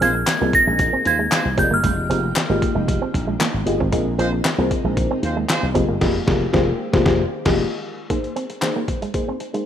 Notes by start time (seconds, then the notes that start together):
Already playing: C3 G#3 A#3 D#4
0.01 A#1 G#3 C4 F4 G#4 A#4 C5 D#5 G#6, closed hi-hat
0.15 muted clean electric guitar stroke
0.27 snare, clap, closed hi-hat
0.41 C2 A#3 C4 F4 G#4 A#4 D#5
0.53 A#6, muted clean electric guitar stroke, kick, closed hi-hat
0.67 A#1 G#3
0.79 kick, closed hi-hat
0.93 C4
1.05 D#2 G#3 F4 C5 G#6, muted clean electric guitar stroke, closed hi-hat
1.19 G#3
1.31 G#3 F4 C5, muted clean electric guitar stroke, snare, clap, closed hi-hat
1.45 C2
1.57 F1 D#3 G#3 A#3 C4 F4 G4 G#4 D5 G5 G6, kick, closed hi-hat
1.64 D#5
1.71 G1 A#3 F6
1.83 F1 G#3, kick, closed hi-hat
2.10 F1 A#3 C4 F4 G4 G#4 D#5, closed hi-hat
2.24 muted clean electric guitar stroke
2.36 snare, clap, closed hi-hat
2.50 G#1 A#3 F4 G4 G#4 D#5
2.62 muted clean electric guitar stroke, kick, closed hi-hat
2.75 F1 G#3
2.88 kick, closed hi-hat
3.02 C4
3.14 A#1, muted clean electric guitar stroke, kick, closed hi-hat
3.27 G#3
3.40 A#3, snare, clap, closed hi-hat
3.54 G#1
3.66 G1 A#3 F4 G4 G#4 D#5, muted clean electric guitar stroke, closed hi-hat
3.80 G#1 C4, kick
3.92 A#1 C3 A#3 C4 D#4 F4 G#4 A#4 D#5, kick, closed hi-hat
4.18 A#1 G#3 C4 F4 G#4 A#4 C5 D#5, closed hi-hat
4.33 muted clean electric guitar stroke
4.45 snare, clap, closed hi-hat
4.58 C2 A#3 C4 F4 G#4 A#4 C5
4.71 muted clean electric guitar stroke, kick, closed hi-hat
4.84 A#1 G#3
4.97 kick, closed hi-hat
5.11 C4
5.23 D#2 G#3 F4 C5, muted clean electric guitar stroke, closed hi-hat
5.37 G#3
5.49 G#3 F4 C5, muted clean electric guitar stroke, snare, clap, closed hi-hat
5.63 C2
5.74 F1 D#3 G#3 A#3 C4 F4 G4 G#4 D#5, kick, closed hi-hat
5.89 G1 A#3
6.00 F1 A#3 F4 G4 G#4 D#5, kick, snare, crash
6.26 F1 A#3 F4 G4 G#4 A#4, kick, snare
6.53 F1 A#3 F4 G4 G#4 C5, kick, snare
6.93 F1 A#3 F4 G4 G#4 C5, kick, snare
7.05 F1 A#3 F4 G4 G#4 C5, kick, snare
7.45 F1 A#3 F4 G4 G#4 D#5, kick, snare, crash
8.10 A#3 D#4 G#4 C5, kick, closed hi-hat
8.24 closed hi-hat
8.36 C4, closed hi-hat
8.50 muted clean electric guitar stroke, closed hi-hat
8.62 A#3 D#4 G#4 C5, snare, clap, closed hi-hat
8.76 A#3
8.88 muted clean electric guitar stroke, kick, closed hi-hat
9.02 G#3, closed hi-hat
9.14 A#3 D#4 G#4 C5, kick, closed hi-hat
9.28 C4
9.40 muted clean electric guitar stroke, closed hi-hat
9.53 G#3 A#3 D#4 G#4 C5, closed hi-hat